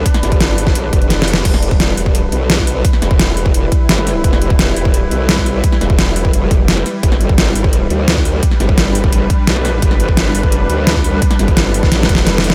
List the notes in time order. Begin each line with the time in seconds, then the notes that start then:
Already playing: G3 D4 B4
0.06 kick, closed hi-hat
0.14 snare, closed hi-hat
0.23 G1, snare, closed hi-hat
0.32 kick, closed hi-hat
0.41 snare, closed hi-hat
0.58 open hi-hat
0.67 kick, snare
0.75 A1, closed hi-hat
0.93 F1, kick, closed hi-hat
1.02 closed hi-hat
1.10 snare, closed hi-hat
1.22 snare
1.28 open hi-hat
1.34 snare
1.45 E1 G3 E4 B4, kick, closed hi-hat, crash
1.54 snare
1.63 closed hi-hat
1.71 kick
1.80 snare, closed hi-hat
1.97 E1, open hi-hat
2.06 kick
2.15 closed hi-hat
2.32 B1, closed hi-hat
2.50 snare, closed hi-hat
2.58 kick
2.67 open hi-hat
2.85 kick, closed hi-hat
2.93 snare
3.02 E1, snare, closed hi-hat
3.11 kick
3.19 snare, closed hi-hat
3.37 open hi-hat
3.46 kick
3.54 E1, closed hi-hat
3.72 kick, closed hi-hat
3.89 G1, snare, closed hi-hat
3.98 snare
4.07 snare, open hi-hat
4.24 E1, kick, closed hi-hat
4.33 snare
4.42 closed hi-hat
4.50 kick
4.59 snare, closed hi-hat
4.76 E1, open hi-hat
4.85 kick
4.94 closed hi-hat
5.11 B1, closed hi-hat
5.29 snare, closed hi-hat
5.38 kick
5.46 open hi-hat
5.64 kick, closed hi-hat
5.72 snare
5.81 E1, snare, closed hi-hat
5.90 kick
5.99 snare, closed hi-hat
6.16 open hi-hat
6.25 kick
6.33 F1, closed hi-hat
6.51 kick, closed hi-hat
6.68 snare, closed hi-hat
6.77 snare
6.86 snare, open hi-hat
7.03 G1 D4 B4, kick, closed hi-hat
7.12 snare
7.21 closed hi-hat
7.29 kick
7.38 snare, closed hi-hat
7.55 G1, open hi-hat
7.64 kick
7.73 closed hi-hat
7.90 D2, closed hi-hat
8.08 snare, closed hi-hat
8.17 kick
8.25 open hi-hat
8.43 kick, closed hi-hat
8.51 snare
8.60 G1, snare, closed hi-hat
8.69 kick
8.78 snare, closed hi-hat
8.95 open hi-hat
9.04 kick
9.13 G1, closed hi-hat
9.30 kick, closed hi-hat
9.47 B1, snare, closed hi-hat
9.56 snare
9.65 snare, open hi-hat
9.82 G1, kick, closed hi-hat
9.91 snare
10.00 closed hi-hat
10.08 kick
10.17 snare, closed hi-hat
10.35 G1, open hi-hat
10.43 kick
10.52 closed hi-hat
10.70 D2, closed hi-hat
10.87 snare, closed hi-hat
10.96 kick
11.04 open hi-hat
11.22 kick, closed hi-hat
11.31 snare, closed hi-hat
11.39 G1, snare, closed hi-hat
11.48 kick, closed hi-hat
11.57 snare, closed hi-hat
11.74 open hi-hat
11.83 kick, snare
11.92 A1, snare, closed hi-hat
12.03 snare
12.09 F1, kick, closed hi-hat
12.15 snare, closed hi-hat
12.27 snare, closed hi-hat
12.38 snare
12.44 open hi-hat
12.50 snare